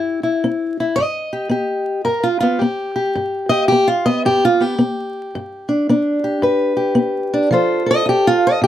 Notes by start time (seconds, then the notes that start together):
Already playing: G2 E4 G4
0.23 E4
0.44 C4
0.80 E4
0.96 G2 D#5
1.33 G4
1.49 B3 G4
2.05 G2 A#4
2.23 F4
2.40 B3 F4
2.59 B3 G4
2.96 G4
3.15 G2
3.49 G4 D#5
3.68 B3 G4
3.88 F4
4.06 B3 D#5
4.25 G2 G4
4.45 F4
4.60 B3 G4
4.78 B3
5.35 G2
5.69 D4
5.89 B3 D4
6.24 G4
6.42 G2 B4
6.77 G4
6.95 B3
7.34 D4
7.51 F3 F4 A4 C5
7.86 A4
7.91 D#5
8.06 F4 G4
8.27 F4
8.47 D#5
8.62 C3 G4